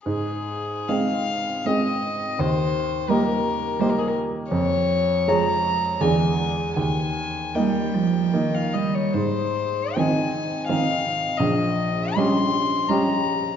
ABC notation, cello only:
X:1
M:3/4
L:1/8
Q:1/4=80
K:Ab
V:1 name="Cello" clef=bass
z2 A,2 A,2 | z2 G,2 G,2 | z2 F,2 =D,2 | z2 G, F, E, G, |
z2 E,2 E,2 | z2 G,2 G,2 |]